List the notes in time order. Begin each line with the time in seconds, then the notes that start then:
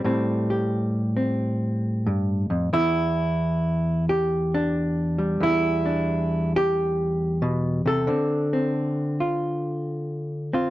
Already playing: G4
0.04 A2 G3 C4
0.50 G4
1.17 C4
2.07 G2
2.50 F2
2.73 E2 E4
4.09 G4
4.54 D4
5.18 G3
5.40 E2 E4
5.86 D4
6.56 G4
7.42 B2
7.86 C3 A4
8.07 D3 C4
8.53 C4
9.20 F4
10.53 C4 F4